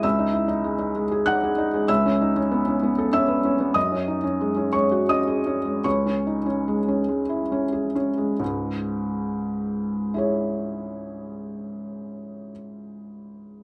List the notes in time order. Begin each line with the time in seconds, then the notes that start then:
0.03 C#2 E5 E6
0.19 D#4
0.33 E4
0.48 D#4
0.64 G#3
0.79 D#4
0.95 G#3
1.11 G#4
1.26 D#4 F#5 F#6
1.44 G#4
1.58 D#4
1.73 G#3
1.88 C#2 E5 E6
2.06 C#4
2.21 D#4
2.36 C#4
2.52 B3
2.68 C#4
2.83 B3
2.98 A4
3.13 C#4 E5 E6
3.28 B4
3.45 C#4
3.60 B3
3.74 F#2 D#5 D#6
3.92 C#4
4.08 D#4
4.24 C#4
4.41 G#3
4.56 C#4
4.73 G#3 C#5 C#6
4.92 F#4
5.09 C#4 D#5 D#6
5.27 G#4
5.46 C#4
5.65 G#3
5.84 C#2 C#5 C#6
6.06 C#4
6.27 D#4
6.46 C#4
6.68 G#3
6.88 C#4
7.09 G#3
7.29 E4
7.52 C#4
7.72 G#4
7.95 C#4
8.18 G#3
8.40 C#2 G#2
10.14 E4 G#4
10.18 C#5